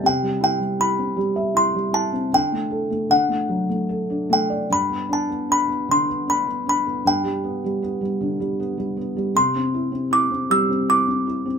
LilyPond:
<<
  \new Staff \with { instrumentName = "Music box" } { \time 3/4 \key g \major \tempo 4 = 78 g''8 g''8 b''4 c'''8 a''8 | g''4 fis''4. g''8 | b''8 a''8 b''8 c'''8 b''8 b''8 | g''2 r4 |
c'''4 d'''8 e'''8 d'''4 | }
  \new Staff \with { instrumentName = "Felt piano" } { \time 3/4 \key g \major c16 g16 e'16 g16 e'16 c'16 g16 e''16 e'16 g16 e'16 c'16 | d16 a16 a'16 a16 d16 a16 fis16 a16 a'16 d'16 a16 d''16 | g,16 b16 d'16 b16 d'16 b16 d16 b16 d'16 b16 d'16 b16 | g,16 g16 b16 g16 b16 g16 d16 g16 b16 g16 b16 g16 |
c16 c'16 e'16 c'16 e'16 c'16 g16 c'16 e'16 c'16 e'16 c'16 | }
>>